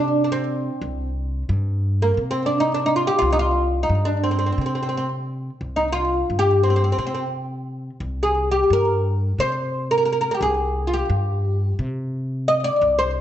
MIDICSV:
0, 0, Header, 1, 3, 480
1, 0, Start_track
1, 0, Tempo, 685714
1, 572, Time_signature, 7, 3, 24, 8
1, 9246, End_track
2, 0, Start_track
2, 0, Title_t, "Oud"
2, 0, Program_c, 0, 24
2, 0, Note_on_c, 0, 62, 80
2, 161, Note_off_c, 0, 62, 0
2, 170, Note_on_c, 0, 62, 59
2, 215, Note_off_c, 0, 62, 0
2, 224, Note_on_c, 0, 60, 76
2, 759, Note_off_c, 0, 60, 0
2, 1416, Note_on_c, 0, 58, 72
2, 1608, Note_off_c, 0, 58, 0
2, 1615, Note_on_c, 0, 60, 81
2, 1720, Note_off_c, 0, 60, 0
2, 1723, Note_on_c, 0, 62, 81
2, 1818, Note_off_c, 0, 62, 0
2, 1821, Note_on_c, 0, 63, 81
2, 1912, Note_off_c, 0, 63, 0
2, 1921, Note_on_c, 0, 62, 83
2, 1999, Note_off_c, 0, 62, 0
2, 2002, Note_on_c, 0, 63, 83
2, 2069, Note_off_c, 0, 63, 0
2, 2072, Note_on_c, 0, 65, 80
2, 2143, Note_off_c, 0, 65, 0
2, 2151, Note_on_c, 0, 67, 94
2, 2228, Note_off_c, 0, 67, 0
2, 2230, Note_on_c, 0, 65, 91
2, 2323, Note_off_c, 0, 65, 0
2, 2328, Note_on_c, 0, 63, 85
2, 2371, Note_off_c, 0, 63, 0
2, 2374, Note_on_c, 0, 65, 85
2, 2679, Note_off_c, 0, 65, 0
2, 2681, Note_on_c, 0, 63, 75
2, 2837, Note_on_c, 0, 62, 74
2, 2853, Note_off_c, 0, 63, 0
2, 2965, Note_on_c, 0, 60, 68
2, 2968, Note_off_c, 0, 62, 0
2, 3009, Note_off_c, 0, 60, 0
2, 3018, Note_on_c, 0, 60, 51
2, 3062, Note_off_c, 0, 60, 0
2, 3070, Note_on_c, 0, 60, 56
2, 3116, Note_off_c, 0, 60, 0
2, 3125, Note_on_c, 0, 60, 44
2, 3158, Note_off_c, 0, 60, 0
2, 3167, Note_on_c, 0, 60, 48
2, 3222, Note_off_c, 0, 60, 0
2, 3230, Note_on_c, 0, 60, 44
2, 3253, Note_off_c, 0, 60, 0
2, 3261, Note_on_c, 0, 60, 53
2, 3317, Note_off_c, 0, 60, 0
2, 3325, Note_on_c, 0, 60, 44
2, 3370, Note_off_c, 0, 60, 0
2, 3378, Note_on_c, 0, 60, 50
2, 3413, Note_off_c, 0, 60, 0
2, 3421, Note_on_c, 0, 60, 51
2, 3473, Note_off_c, 0, 60, 0
2, 3482, Note_on_c, 0, 60, 59
2, 3539, Note_off_c, 0, 60, 0
2, 4034, Note_on_c, 0, 63, 74
2, 4145, Note_off_c, 0, 63, 0
2, 4148, Note_on_c, 0, 65, 86
2, 4469, Note_off_c, 0, 65, 0
2, 4472, Note_on_c, 0, 67, 91
2, 4641, Note_off_c, 0, 67, 0
2, 4644, Note_on_c, 0, 60, 72
2, 4682, Note_off_c, 0, 60, 0
2, 4691, Note_on_c, 0, 60, 52
2, 4724, Note_off_c, 0, 60, 0
2, 4732, Note_on_c, 0, 60, 60
2, 4779, Note_off_c, 0, 60, 0
2, 4788, Note_on_c, 0, 60, 48
2, 4837, Note_off_c, 0, 60, 0
2, 4845, Note_on_c, 0, 60, 58
2, 4881, Note_off_c, 0, 60, 0
2, 4889, Note_on_c, 0, 60, 53
2, 4937, Note_off_c, 0, 60, 0
2, 4946, Note_on_c, 0, 60, 62
2, 4993, Note_off_c, 0, 60, 0
2, 5002, Note_on_c, 0, 60, 54
2, 5060, Note_off_c, 0, 60, 0
2, 5760, Note_on_c, 0, 68, 77
2, 5958, Note_off_c, 0, 68, 0
2, 5960, Note_on_c, 0, 67, 77
2, 6103, Note_off_c, 0, 67, 0
2, 6111, Note_on_c, 0, 70, 89
2, 6553, Note_off_c, 0, 70, 0
2, 6580, Note_on_c, 0, 72, 102
2, 6934, Note_off_c, 0, 72, 0
2, 6937, Note_on_c, 0, 70, 81
2, 6975, Note_off_c, 0, 70, 0
2, 6983, Note_on_c, 0, 70, 65
2, 7030, Note_off_c, 0, 70, 0
2, 7038, Note_on_c, 0, 70, 69
2, 7080, Note_off_c, 0, 70, 0
2, 7088, Note_on_c, 0, 70, 62
2, 7138, Note_off_c, 0, 70, 0
2, 7147, Note_on_c, 0, 70, 71
2, 7198, Note_off_c, 0, 70, 0
2, 7218, Note_on_c, 0, 70, 67
2, 7238, Note_off_c, 0, 70, 0
2, 7241, Note_on_c, 0, 67, 61
2, 7290, Note_off_c, 0, 67, 0
2, 7297, Note_on_c, 0, 68, 82
2, 7611, Note_on_c, 0, 65, 56
2, 7613, Note_off_c, 0, 68, 0
2, 7655, Note_off_c, 0, 65, 0
2, 7655, Note_on_c, 0, 67, 71
2, 8320, Note_off_c, 0, 67, 0
2, 8737, Note_on_c, 0, 75, 86
2, 8847, Note_off_c, 0, 75, 0
2, 8850, Note_on_c, 0, 74, 94
2, 9087, Note_off_c, 0, 74, 0
2, 9090, Note_on_c, 0, 72, 96
2, 9246, Note_off_c, 0, 72, 0
2, 9246, End_track
3, 0, Start_track
3, 0, Title_t, "Upright bass"
3, 0, Program_c, 1, 32
3, 0, Note_on_c, 1, 48, 84
3, 482, Note_off_c, 1, 48, 0
3, 571, Note_on_c, 1, 36, 93
3, 993, Note_off_c, 1, 36, 0
3, 1044, Note_on_c, 1, 43, 98
3, 1469, Note_off_c, 1, 43, 0
3, 1521, Note_on_c, 1, 48, 90
3, 2159, Note_off_c, 1, 48, 0
3, 2251, Note_on_c, 1, 36, 95
3, 2674, Note_off_c, 1, 36, 0
3, 2726, Note_on_c, 1, 43, 94
3, 3151, Note_off_c, 1, 43, 0
3, 3205, Note_on_c, 1, 48, 89
3, 3841, Note_off_c, 1, 48, 0
3, 3925, Note_on_c, 1, 36, 84
3, 4350, Note_off_c, 1, 36, 0
3, 4408, Note_on_c, 1, 43, 90
3, 4832, Note_off_c, 1, 43, 0
3, 4887, Note_on_c, 1, 48, 82
3, 5522, Note_off_c, 1, 48, 0
3, 5602, Note_on_c, 1, 36, 93
3, 6028, Note_off_c, 1, 36, 0
3, 6092, Note_on_c, 1, 43, 95
3, 6514, Note_off_c, 1, 43, 0
3, 6569, Note_on_c, 1, 48, 88
3, 7203, Note_off_c, 1, 48, 0
3, 7284, Note_on_c, 1, 36, 99
3, 7709, Note_off_c, 1, 36, 0
3, 7767, Note_on_c, 1, 43, 98
3, 8190, Note_off_c, 1, 43, 0
3, 8252, Note_on_c, 1, 48, 92
3, 8884, Note_off_c, 1, 48, 0
3, 8970, Note_on_c, 1, 36, 98
3, 9246, Note_off_c, 1, 36, 0
3, 9246, End_track
0, 0, End_of_file